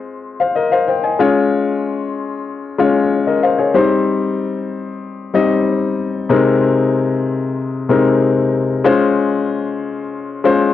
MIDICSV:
0, 0, Header, 1, 2, 480
1, 0, Start_track
1, 0, Tempo, 638298
1, 899, Time_signature, 4, 2, 24, 8
1, 8074, End_track
2, 0, Start_track
2, 0, Title_t, "Grand piano"
2, 0, Program_c, 0, 0
2, 0, Control_c, 0, 64, 127
2, 0, Note_on_c, 0, 56, 79
2, 0, Note_on_c, 0, 60, 70
2, 0, Note_on_c, 0, 65, 70
2, 0, Note_on_c, 0, 72, 85
2, 300, Note_on_c, 0, 77, 56
2, 304, Note_off_c, 0, 72, 0
2, 304, Note_on_c, 0, 72, 49
2, 413, Note_off_c, 0, 77, 0
2, 415, Note_off_c, 0, 72, 0
2, 417, Note_on_c, 0, 75, 68
2, 422, Note_on_c, 0, 70, 57
2, 532, Note_off_c, 0, 75, 0
2, 534, Note_off_c, 0, 70, 0
2, 539, Note_on_c, 0, 77, 68
2, 543, Note_on_c, 0, 72, 58
2, 652, Note_off_c, 0, 72, 0
2, 653, Note_off_c, 0, 77, 0
2, 658, Note_on_c, 0, 79, 59
2, 663, Note_on_c, 0, 72, 52
2, 772, Note_off_c, 0, 79, 0
2, 775, Note_off_c, 0, 72, 0
2, 778, Note_on_c, 0, 80, 58
2, 784, Note_on_c, 0, 75, 45
2, 896, Note_off_c, 0, 56, 0
2, 896, Note_on_c, 0, 56, 78
2, 898, Note_on_c, 0, 61, 73
2, 901, Note_off_c, 0, 65, 0
2, 901, Note_on_c, 0, 65, 72
2, 904, Note_on_c, 0, 73, 87
2, 909, Note_off_c, 0, 60, 0
2, 910, Control_c, 0, 64, 0
2, 1006, Note_off_c, 0, 80, 0
2, 1009, Note_off_c, 0, 75, 0
2, 1034, Control_c, 0, 64, 127
2, 1753, Note_off_c, 0, 56, 0
2, 1754, Note_off_c, 0, 61, 0
2, 1756, Note_off_c, 0, 65, 0
2, 1757, Note_off_c, 0, 73, 0
2, 2093, Note_on_c, 0, 56, 73
2, 2097, Note_on_c, 0, 61, 69
2, 2100, Note_on_c, 0, 65, 66
2, 2103, Note_on_c, 0, 73, 78
2, 2341, Note_off_c, 0, 73, 0
2, 2458, Note_on_c, 0, 75, 62
2, 2463, Note_on_c, 0, 70, 52
2, 2572, Note_off_c, 0, 75, 0
2, 2575, Note_off_c, 0, 70, 0
2, 2579, Note_on_c, 0, 77, 65
2, 2583, Note_on_c, 0, 72, 54
2, 2693, Note_off_c, 0, 77, 0
2, 2695, Note_off_c, 0, 72, 0
2, 2695, Note_on_c, 0, 73, 58
2, 2701, Note_on_c, 0, 68, 48
2, 2738, Note_off_c, 0, 56, 0
2, 2740, Note_off_c, 0, 61, 0
2, 2741, Note_off_c, 0, 65, 0
2, 2812, Note_on_c, 0, 55, 81
2, 2816, Note_on_c, 0, 60, 72
2, 2819, Note_on_c, 0, 63, 71
2, 2821, Note_on_c, 0, 72, 85
2, 2828, Control_c, 0, 64, 0
2, 2925, Note_off_c, 0, 73, 0
2, 2928, Note_off_c, 0, 68, 0
2, 2970, Control_c, 0, 64, 127
2, 3671, Note_off_c, 0, 55, 0
2, 3674, Note_off_c, 0, 60, 0
2, 3675, Note_off_c, 0, 63, 0
2, 3676, Note_off_c, 0, 72, 0
2, 4013, Note_on_c, 0, 55, 72
2, 4016, Note_on_c, 0, 60, 67
2, 4019, Note_on_c, 0, 63, 69
2, 4022, Note_on_c, 0, 75, 83
2, 4658, Note_off_c, 0, 55, 0
2, 4659, Note_off_c, 0, 60, 0
2, 4661, Note_off_c, 0, 63, 0
2, 4662, Note_off_c, 0, 75, 0
2, 4734, Note_on_c, 0, 48, 84
2, 4736, Note_on_c, 0, 56, 75
2, 4739, Note_on_c, 0, 60, 73
2, 4741, Note_on_c, 0, 63, 71
2, 4743, Note_on_c, 0, 70, 83
2, 4748, Control_c, 0, 64, 0
2, 4900, Control_c, 0, 64, 127
2, 5592, Note_off_c, 0, 48, 0
2, 5593, Note_off_c, 0, 56, 0
2, 5595, Note_off_c, 0, 60, 0
2, 5596, Note_off_c, 0, 63, 0
2, 5597, Note_off_c, 0, 70, 0
2, 5934, Note_on_c, 0, 48, 70
2, 5936, Note_on_c, 0, 56, 66
2, 5937, Note_on_c, 0, 60, 70
2, 5941, Note_on_c, 0, 63, 66
2, 5942, Note_on_c, 0, 70, 81
2, 6578, Note_off_c, 0, 48, 0
2, 6579, Note_off_c, 0, 56, 0
2, 6580, Note_off_c, 0, 60, 0
2, 6582, Note_off_c, 0, 63, 0
2, 6582, Note_off_c, 0, 70, 0
2, 6651, Note_on_c, 0, 56, 89
2, 6654, Note_on_c, 0, 61, 81
2, 6657, Note_on_c, 0, 65, 81
2, 6659, Note_on_c, 0, 72, 93
2, 6667, Control_c, 0, 64, 0
2, 6804, Control_c, 0, 64, 127
2, 7511, Note_off_c, 0, 56, 0
2, 7512, Note_off_c, 0, 61, 0
2, 7514, Note_off_c, 0, 65, 0
2, 7515, Note_off_c, 0, 72, 0
2, 7851, Note_on_c, 0, 56, 79
2, 7854, Note_on_c, 0, 61, 73
2, 7857, Note_on_c, 0, 65, 70
2, 7860, Note_on_c, 0, 72, 90
2, 8074, Note_off_c, 0, 56, 0
2, 8074, Note_off_c, 0, 61, 0
2, 8074, Note_off_c, 0, 65, 0
2, 8074, Note_off_c, 0, 72, 0
2, 8074, End_track
0, 0, End_of_file